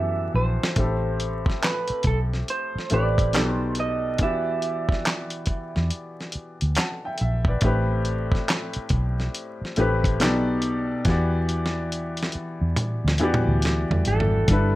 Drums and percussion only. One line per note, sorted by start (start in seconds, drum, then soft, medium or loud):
0.63 snare medium
0.76 kick loud
0.76 closed hi-hat medium
1.20 closed hi-hat medium
1.46 kick medium
1.46 snare soft
1.63 snare loud
1.63 clap medium
1.63 closed hi-hat medium
1.88 closed hi-hat soft
2.03 kick medium
2.03 closed hi-hat medium
2.33 snare soft
2.48 closed hi-hat medium
2.78 snare soft
2.90 closed hi-hat medium
3.18 kick medium
3.18 closed hi-hat soft
3.33 snare loud
3.33 clap medium
3.33 closed hi-hat medium
3.75 closed hi-hat medium
4.18 kick loud
4.18 closed hi-hat medium
4.62 closed hi-hat medium
4.89 kick medium
4.89 snare soft
5.05 snare loud
5.05 clap medium
5.05 closed hi-hat medium
5.30 closed hi-hat medium
5.46 kick medium
5.46 closed hi-hat medium
5.76 snare soft
5.90 closed hi-hat medium
6.21 snare soft
6.32 closed hi-hat medium
6.61 closed hi-hat soft
6.75 snare loud
6.75 clap medium
6.75 closed hi-hat medium
7.18 closed hi-hat medium
7.45 kick medium
7.61 kick loud
7.61 closed hi-hat medium
8.05 closed hi-hat medium
8.32 kick medium
8.32 snare soft
8.48 snare loud
8.48 clap medium
8.48 closed hi-hat medium
8.73 closed hi-hat soft
8.89 kick medium
8.89 closed hi-hat medium
9.20 snare soft
9.35 closed hi-hat medium
9.65 snare soft
9.76 closed hi-hat medium
10.04 kick medium
10.04 closed hi-hat soft
10.20 snare loud
10.20 clap medium
10.20 closed hi-hat medium
10.62 closed hi-hat medium
11.05 kick loud
11.05 snare medium
11.05 closed hi-hat medium
11.49 closed hi-hat medium
11.66 snare medium
11.92 closed hi-hat medium
12.17 closed hi-hat soft
12.23 snare medium
12.32 closed hi-hat medium
12.76 closed hi-hat medium
12.76 mid tom medium
13.08 snare medium
13.18 closed hi-hat medium
13.34 mid tom medium
13.62 snare medium
13.62 closed hi-hat medium
13.91 floor tom medium
14.05 closed hi-hat medium
14.20 floor tom medium
14.48 kick loud
14.48 closed hi-hat medium